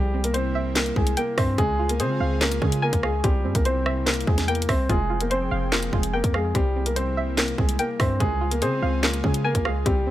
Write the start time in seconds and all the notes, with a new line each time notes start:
Already playing: C2 C3 G3 A#3 C4 E4 G4
0.14 C4
0.24 A#3 A#4, closed hi-hat
0.34 C4 C5, closed hi-hat
0.55 E5
0.75 A#3 C4 A#4, snare, clap, closed hi-hat
0.86 closed hi-hat
0.96 C2 G#3 C4 G#4, kick
1.07 closed hi-hat
1.17 A#3 A#4 G5, closed hi-hat
1.37 G2 C4 C5 E5, kick, cross-stick, open hi-hat
1.58 C#2 C#3 G#3 F4 G#4, kick, closed hi-hat
1.79 F4
1.89 A#3 A#4, closed hi-hat
2.00 C#3 C4 G#4 C5, closed hi-hat
2.20 C#2 F5
2.41 A#3 C#4 A#4, snare, clap, closed hi-hat
2.52 closed hi-hat
2.62 C#3 G#3 C#4 G#4, kick
2.72 closed hi-hat
2.82 A#3 A#4 G#5
2.93 C#2, kick, closed hi-hat
3.03 G#3 G#4 F5, cross-stick
3.24 C2 C3 G3 A#3 C4 E4 G4, kick, closed hi-hat
3.45 G2 C4
3.55 C2 A#3 A#4, kick, closed hi-hat
3.65 C4 C5, closed hi-hat
3.86 E5, cross-stick
4.06 A#3 C4 A#4, snare, clap, closed hi-hat
4.14 closed hi-hat
4.21 closed hi-hat
4.27 E2 G#3 C4 G#4, kick
4.38 snare, closed hi-hat
4.48 A#3 A#4 G5, closed hi-hat
4.55 closed hi-hat
4.62 closed hi-hat
4.69 C2 C4 C5 E5, kick, cross-stick, open hi-hat
4.89 F1 F3 G#3 C4 F4 G#4 G5, kick, closed hi-hat
5.10 F4
5.21 A#3 A#4, closed hi-hat
5.30 C4 C5, closed hi-hat
5.51 F1 F5
5.72 A#3 F4 A#4, snare, clap, closed hi-hat
5.83 closed hi-hat
5.93 F1 G#3 F4 G#4, kick
6.03 closed hi-hat
6.13 A#3 A#4 G5
6.24 F2, kick, closed hi-hat
6.34 G#3 G#4 F5, cross-stick
6.55 C2 C3 G3 A#3 C4 E4 G4, kick, closed hi-hat
6.76 C4
6.86 A#3 A#4, closed hi-hat
6.96 C4 C5, closed hi-hat
7.17 E5
7.37 A#3 C4 A#4, snare, clap, closed hi-hat
7.48 closed hi-hat
7.58 C2 G#3 C4 G#4, kick
7.69 closed hi-hat
7.79 A#3 A#4 G5, closed hi-hat
7.99 G2 C4 C5 E5, kick, cross-stick, open hi-hat
8.20 C#2 C#3 G#3 F4 G#4, kick, closed hi-hat
8.41 F4
8.51 A#3 A#4, closed hi-hat
8.62 C#3 C4 G#4 C5, closed hi-hat
8.82 C#2 F5
9.03 A#3 C#4 A#4, snare, clap, closed hi-hat
9.14 closed hi-hat
9.24 C#3 G#3 C#4 G#4, kick
9.34 closed hi-hat
9.44 A#3 A#4 G#5
9.55 C#2, kick, closed hi-hat
9.65 G#3 G#4 F5, cross-stick
9.86 C2 C3 G3 A#3 C4 E4 G4, kick, closed hi-hat
10.06 G2 C4